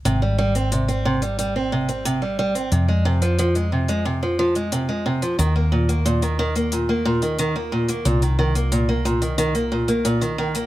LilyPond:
<<
  \new Staff \with { instrumentName = "Steel-string acoustic guitar" } { \clef bass \time 4/4 \key c \minor \tempo 4 = 90 c16 g16 g16 c'16 c16 c'16 c16 g16 g16 c'16 c16 c'16 c16 g16 g16 c'16 | c16 aes16 c16 f16 f16 aes16 c16 aes16 c16 f16 f16 aes16 c16 aes16 c16 f16 | ees16 bes16 bes,16 bes16 bes,16 ees16 ees16 bes16 bes,16 bes16 bes,16 ees16 ees16 bes16 bes,16 bes16 | bes,16 ees16 ees16 bes16 bes,16 bes16 bes,16 ees16 ees16 bes16 bes,16 bes16 bes,16 ees16 ees16 bes16 | }
  \new Staff \with { instrumentName = "Fingered electric bass" } { \clef bass \time 4/4 \key c \minor aes,,1 | f,1 | ees,1 | c,1 | }
  \new DrumStaff \with { instrumentName = "Drums" } \drummode { \time 4/4 hho8. hho16 hho16 hho8 hho16 hho8. hho16 hho8. hho16 | hho8. hho16 hho16 hho8 hho16 r8. hho16 hho8. hho16 | hho8. hho16 hho16 hho8 hho16 hho8. hho16 hho8. hho16 | hho16 hho8 hho16 hho8 hho16 hho16 hho16 hho8 hho16 hho16 hho8 hho16 | }
>>